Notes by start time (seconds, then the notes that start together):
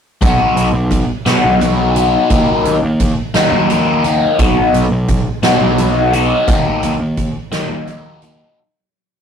0.21 B1 F#3 B3 D#4 F#4, kick, closed hi-hat, high conga, low conga
0.38 low conga
0.56 B1, closed hi-hat
0.73 B1
0.91 kick, closed hi-hat, high conga, low conga
1.26 B2 F#3 B3 D#4 F#4, snare, closed hi-hat
1.43 B1, low conga
1.61 F#3 B3 D#4 F#4, closed hi-hat, high conga
1.95 F#3 B3 D#4 F#4, closed hi-hat, low conga
2.30 D#2 D#3 F#3 A#3 D#4, kick, closed hi-hat, high conga, low conga
2.48 low conga
2.65 D#2, closed hi-hat
2.83 D#2
3.00 kick, closed hi-hat, high conga, low conga
3.34 D#3 F#3 A#3 D#4, snare, closed hi-hat
3.51 D#2, low conga
3.69 D#3 F#3 A#3 D#4, closed hi-hat, high conga
4.04 D#3 F#3 A#3 D#4, closed hi-hat, low conga
4.39 B1 F#3 B3 D#4 F#4, kick, closed hi-hat, high conga, low conga
4.56 low conga
4.74 B1, closed hi-hat
4.91 B1
5.08 kick, closed hi-hat, high conga, low conga
5.43 B2 F#3 B3 D#4 F#4, snare, closed hi-hat
5.61 B1, low conga
5.78 F#3 B3 D#4 F#4, closed hi-hat, high conga
6.13 F#3 B3 D#4 F#4, closed hi-hat, low conga
6.48 D#2 D#3 F#3 A#3 D#4, kick, closed hi-hat, high conga, low conga
6.83 D#2, closed hi-hat
7.00 D#2
7.17 kick, closed hi-hat, high conga, low conga
7.36 low conga
7.52 D#3 F#3 A#3 D#4, snare, closed hi-hat
7.69 D#2, low conga
7.87 D#3 F#3 A#3 D#4, closed hi-hat, high conga
8.22 D#3 F#3 A#3 D#4, closed hi-hat, low conga